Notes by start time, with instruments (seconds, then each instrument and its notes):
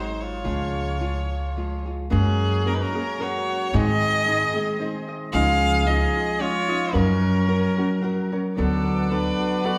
Already playing: upright bass G#1, nylon-string guitar F#3 G#3 C4 G#4, trumpet D#4, violin C5
0.21 trumpet F4, violin C#5
0.44 upright bass C#2, nylon-string guitar C#3 F3 G#3 F4 G#4
1.00 nylon-string guitar F3 G#3 F4 G#4
1.56 nylon-string guitar F3 G#3 F4 G#4
1.86 nylon-string guitar G#3 F4 G#4
2.10 upright bass F#2, nylon-string guitar F#3 A#3 C#4 G#4, harp G#3, trumpet C#4, violin G#4
2.64 nylon-string guitar F#3 A#3 C#4 G#4, trumpet C#4, harp F#4, violin A#4
2.74 trumpet D#4, violin B4
2.81 trumpet C#4, violin A#4
2.93 nylon-string guitar A#3 C#4 G#4, harp G#4
3.18 nylon-string guitar F#3 A#3 C#4 G#4, trumpet F#4, harp A#4, violin C#5
3.49 harp F#5
3.73 nylon-string guitar G#2 D#3 G#3 C4 D#4 G#4, upright bass G#2, harp G#3, trumpet G#4, violin D#5
4.26 nylon-string guitar G#3 C4 D#4 G#4, harp D#4
4.54 nylon-string guitar G#3 C4 D#4 G#4, harp G#4
4.79 nylon-string guitar G#3 C4 D#4 G#4, harp C5
5.09 harp D#5
5.33 upright bass C#2, nylon-string guitar C#3 G#3 C#4 D#4 F4, harp F3, trumpet G#4, violin F5
5.86 nylon-string guitar G#3 C#4 D#4 F4, harp D#4, trumpet G#4, violin D#5
6.16 harp F4
6.39 nylon-string guitar G#3 C#4 D#4 F4, trumpet F4, violin C#5, harp C#5
6.68 nylon-string guitar C#4 D#4 F4, harp D#5
6.93 upright bass F#2, nylon-string guitar F#3 C#4 F#4 A#4, harp F#3, trumpet C#4, violin A#4
7.48 nylon-string guitar F#3 C#4 F#4 A#4, harp C#4
7.77 nylon-string guitar C#4 F#4 A#4, harp F#4
8.01 nylon-string guitar F#3 C#4 F#4 A#4, harp A#4
8.32 nylon-string guitar C#4 F#4 A#4, harp C#5
8.56 upright bass D2, nylon-string guitar D3 F#3 B3 F#4 A4, harp F#3, violin section B3 F#5 D6, trumpet D4, violin A4
9.10 nylon-string guitar F#3 B3 F#4 A4, harp D4, trumpet D4, violin B4
9.40 harp F#4
9.64 nylon-string guitar F#3 B3 F#4 A4, trumpet F#4, harp B4, violin D5